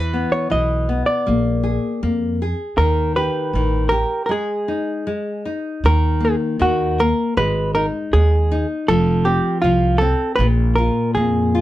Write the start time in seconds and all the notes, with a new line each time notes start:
Already playing: E2 E3 B4
0.13 B3
0.32 C#5
0.50 B1 E3 D#5
0.89 B3
1.06 D5
1.26 A#1 A#3
1.63 G#4
2.03 F2 A#3
2.42 G#4
2.77 D#2 D#3 A#4
3.16 G4 B4
3.53 A1 D#3
3.89 G4 A#4
4.26 G#3 A#4
4.31 G#4
4.68 D#4
5.07 G#3
5.45 D#4
5.84 D#2 D#3 A#4
6.20 A#3
6.25 G#4
6.59 D#2 D#3 F#4
6.99 A#3 A#4
7.37 G#1 G#3 B4
7.75 D#4 A#4
8.13 D#2 G#3 G#4
8.52 D#4
8.88 F1 F3 A4
9.25 C4 G4
9.62 C2 F3 F4
9.98 C4 A4
10.36 A#1 B4
10.40 A#2
10.75 F4 A#4
11.15 F2 A#3 G#4
11.55 F4